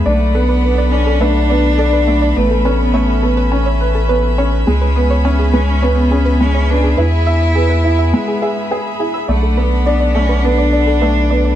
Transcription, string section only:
0.00 11.55 B5 medium
0.06 2.34 D4 medium
0.06 4.63 A4 medium
0.06 2.34 F#5 medium
2.37 4.65 C#4 medium
2.37 9.25 E5 medium
4.67 6.96 C#4 medium
4.67 9.25 G#4 medium
6.97 9.26 B3 medium
9.29 11.55 D4 medium
9.29 11.55 A4 medium
9.29 11.55 F#5 medium

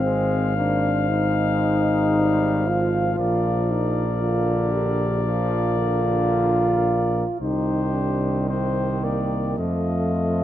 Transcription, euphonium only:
0.00 0.56 C4 medium
0.57 1.10 D4 medium
1.09 2.70 D#4 medium
2.69 3.72 F4 medium
3.70 4.04 D#4 medium
4.21 4.74 F4 medium
4.72 5.26 G4 medium
5.25 7.41 F4 medium
7.41 7.96 D#4 medium
7.94 8.50 D4 medium
8.49 9.05 C4 medium
9.04 9.60 A#3 medium
9.59 10.44 A3 medium

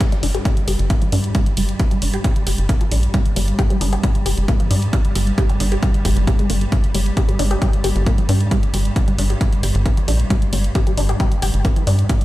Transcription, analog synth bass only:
0.23 0.40 G1 loud
0.68 0.76 G1 medium
0.79 0.96 G1 medium
1.12 1.30 G2 loud
1.57 1.74 G1 medium
2.02 2.19 G1 medium
2.47 2.56 G1 medium
2.58 2.75 G1 medium
2.92 3.09 A#1 loud
3.36 3.53 G1 loud
3.81 3.98 G1 loud
4.26 4.35 G1 medium
4.38 4.54 G1 medium
4.71 4.88 G2 loud
5.15 5.33 G1 medium
5.60 5.77 G1 medium
6.05 6.14 G1 medium
6.17 6.33 G1 medium
6.50 6.67 G1 medium
6.94 7.12 G1 loud
7.39 7.56 G1 loud
7.84 7.93 G1 medium
7.96 8.12 G1 medium
8.29 8.46 G2 loud
8.74 8.91 G1 loud
9.18 9.36 G1 medium
9.63 9.72 G1 medium
9.75 9.91 G1 medium
10.08 10.25 A#1 loud
10.53 10.70 G1 loud
10.98 11.15 G1 loud
11.42 11.51 G1 medium
11.54 11.71 G1 medium
11.87 12.04 G2 loud

